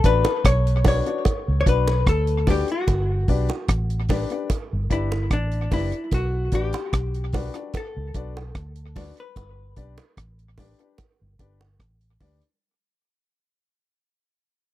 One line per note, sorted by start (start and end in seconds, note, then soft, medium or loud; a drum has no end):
0.04 0.23 A1 medium
0.04 0.22 D4 medium
0.04 0.22 F#4 medium
0.04 0.22 B4 medium
0.04 0.46 B4 loud
0.04 0.22 D5 loud
0.04 kick medium
0.04 closed hi-hat medium
0.25 closed hi-hat soft
0.25 high bongo medium
0.45 1.00 B1 medium
0.45 0.87 C#5 loud
0.45 kick medium
0.45 cross-stick loud
0.45 closed hi-hat medium
0.67 closed hi-hat medium
0.85 1.03 D4 medium
0.85 1.03 F#4 medium
0.85 1.03 B4 medium
0.85 1.59 C#5 loud
0.85 1.03 D5 loud
0.85 kick medium
0.85 open hi-hat medium
0.85 high bongo soft
0.85 low bongo medium
1.06 1.23 D4 medium
1.06 1.23 F#4 medium
1.06 1.23 B4 medium
1.06 1.23 D5 medium
1.06 closed hi-hat soft
1.25 kick loud
1.25 closed hi-hat medium
1.25 high bongo medium
1.48 1.65 C#2 medium
1.61 1.67 C#5 medium
1.66 2.03 B1 medium
1.66 1.84 D4 loud
1.66 1.84 F#4 medium
1.66 1.84 B4 medium
1.66 2.05 B4 medium
1.66 1.85 D5 loud
1.66 kick loud
1.66 closed hi-hat medium
1.88 high bongo medium
2.07 2.62 D2 medium
2.07 2.50 A4 loud
2.07 kick loud
2.07 cross-stick loud
2.07 closed hi-hat medium
2.27 closed hi-hat medium
2.47 2.65 D4 medium
2.47 2.65 F#4 medium
2.47 2.71 G4 medium
2.47 2.65 B4 medium
2.47 2.66 D5 loud
2.47 kick medium
2.47 open hi-hat medium
2.47 low bongo medium
2.68 4.19 F#4 medium
2.68 closed hi-hat soft
2.88 3.24 G1 loud
2.88 kick loud
2.88 closed hi-hat medium
2.88 high bongo medium
3.28 3.48 B1 medium
3.28 3.46 D4 loud
3.28 3.46 G4 medium
3.28 3.47 B4 medium
3.28 3.47 D5 loud
3.28 kick medium
3.28 open hi-hat medium
3.49 closed hi-hat medium
3.49 high bongo medium
3.68 4.24 A1 medium
3.68 kick medium
3.68 cross-stick loud
3.68 closed hi-hat loud
3.90 closed hi-hat soft
4.09 4.27 D4 medium
4.09 4.27 G4 medium
4.09 4.28 B4 medium
4.09 4.28 D5 loud
4.09 kick medium
4.09 open hi-hat medium
4.09 high bongo soft
4.09 low bongo medium
4.19 4.92 E4 medium
4.30 4.47 D4 medium
4.30 4.47 G4 medium
4.30 4.47 B4 medium
4.30 4.47 D5 medium
4.30 closed hi-hat soft
4.50 kick loud
4.50 closed hi-hat medium
4.50 high bongo medium
4.73 4.89 G1 medium
4.90 5.27 G1 medium
4.90 5.08 D4 medium
4.90 5.29 E4 medium
4.90 5.08 G4 medium
4.90 5.09 B4 medium
4.90 5.09 D5 loud
4.90 kick loud
4.90 closed hi-hat medium
5.12 high bongo medium
5.31 5.67 A1 medium
5.31 5.70 D4 medium
5.31 kick loud
5.31 cross-stick loud
5.31 closed hi-hat medium
5.52 closed hi-hat medium
5.71 5.91 F#1 medium
5.71 5.89 D4 medium
5.71 6.14 E4 medium
5.71 5.90 G4 medium
5.71 5.90 B4 medium
5.71 5.90 D5 loud
5.71 kick loud
5.71 open hi-hat medium
5.71 low bongo medium
5.92 closed hi-hat soft
6.11 6.48 B1 medium
6.11 6.55 F#4 loud
6.11 kick loud
6.11 closed hi-hat medium
6.11 high bongo medium
6.52 6.72 A1 medium
6.52 6.70 D4 medium
6.52 6.71 F#4 medium
6.52 7.77 G4 medium
6.52 6.71 B4 medium
6.52 6.71 D5 loud
6.52 kick medium
6.52 closed hi-hat medium
6.73 closed hi-hat soft
6.73 high bongo medium
6.93 7.49 B1 loud
6.93 kick medium
6.93 cross-stick loud
6.93 closed hi-hat medium
7.14 closed hi-hat medium
7.33 7.52 D4 medium
7.33 7.52 F#4 medium
7.33 7.52 B4 medium
7.33 7.52 D5 loud
7.33 kick medium
7.33 open hi-hat medium
7.33 high bongo soft
7.33 low bongo medium
7.54 7.71 D4 medium
7.54 7.71 F#4 medium
7.54 7.71 B4 medium
7.54 7.72 D5 medium
7.54 cross-stick medium
7.54 closed hi-hat soft
7.74 9.23 A4 medium
7.74 kick loud
7.74 closed hi-hat medium
7.74 high bongo medium
7.97 8.13 C#2 medium
8.14 8.51 B1 medium
8.14 8.33 D4 medium
8.14 8.33 F#4 medium
8.14 8.33 B4 medium
8.14 8.33 D5 loud
8.14 kick loud
8.14 closed hi-hat medium
8.37 high bongo medium
8.55 9.11 D2 medium
8.55 kick loud
8.55 cross-stick loud
8.55 closed hi-hat medium
8.76 closed hi-hat medium
8.96 9.14 D4 medium
8.96 9.14 F#4 medium
8.96 9.14 B4 medium
8.96 9.14 D5 loud
8.96 kick medium
8.96 open hi-hat medium
8.96 low bongo medium
9.17 11.77 B4 medium
9.17 closed hi-hat medium
9.36 9.73 G1 medium
9.36 kick loud
9.36 closed hi-hat medium
9.36 high bongo medium
9.76 9.96 B1 medium
9.76 9.95 D4 loud
9.76 9.95 G4 medium
9.76 9.95 B4 medium
9.76 9.95 D5 loud
9.76 kick medium
9.76 closed hi-hat medium
9.98 closed hi-hat medium
9.98 high bongo medium
10.17 10.73 A1 medium
10.17 kick loud
10.17 cross-stick loud
10.17 closed hi-hat loud
10.39 closed hi-hat soft
10.58 10.76 D4 medium
10.58 10.76 G4 medium
10.58 10.76 B4 medium
10.58 10.76 D5 loud
10.58 kick medium
10.58 open hi-hat medium
10.58 high bongo soft
10.58 low bongo medium
10.79 10.96 D4 medium
10.79 10.96 G4 medium
10.79 10.96 B4 medium
10.79 10.96 D5 medium
10.79 closed hi-hat medium
10.98 kick loud
10.98 closed hi-hat medium
10.98 high bongo medium
11.21 11.38 G1 medium
11.39 11.76 G1 loud
11.39 11.57 D4 medium
11.39 11.57 G4 medium
11.39 11.57 B4 medium
11.39 11.58 D5 loud
11.39 kick medium
11.39 closed hi-hat medium
11.39 high bongo medium
11.61 high bongo medium
11.80 12.16 A1 medium
11.80 kick loud
11.80 cross-stick loud
11.80 closed hi-hat medium
12.01 closed hi-hat medium
12.20 12.40 D2 medium
12.20 12.38 D4 medium
12.20 12.38 G4 medium
12.20 12.39 B4 medium
12.20 12.39 D5 loud
12.20 kick loud
12.20 open hi-hat medium
12.20 low bongo medium
12.42 closed hi-hat soft